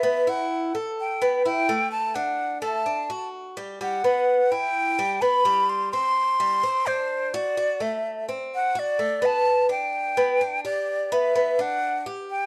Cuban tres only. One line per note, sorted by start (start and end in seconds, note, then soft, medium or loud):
0.03 0.27 B3 medium
0.27 0.73 E4 medium
0.75 1.20 A4 medium
1.22 1.44 B3 medium
1.45 1.68 E4 medium
1.69 2.14 A3 medium
2.16 2.61 D4 medium
2.62 2.85 A3 medium
2.86 3.09 D4 medium
3.10 3.55 F#4 medium
3.57 3.80 G3 medium
3.81 4.03 G3 medium
4.04 4.50 B3 medium
4.52 4.97 E4 medium
4.99 5.21 G3 medium
5.22 5.44 B3 medium
5.45 5.91 G3 medium
5.93 6.38 C4 medium
6.40 6.62 G3 medium
6.63 6.86 C4 medium
6.87 7.32 D4 medium
7.34 7.56 F#4 medium
7.57 7.80 F#4 medium
7.80 8.26 A3 medium
8.29 8.74 C4 medium
8.75 8.98 F#4 medium
8.99 9.21 A3 medium
9.22 9.68 B3 medium
9.69 10.15 D4 medium
10.17 10.40 B3 medium
10.41 10.63 D4 medium
10.65 11.10 G4 medium
11.12 11.34 B3 medium
11.36 11.58 B3 medium
11.59 12.04 D4 medium
12.06 12.46 G4 medium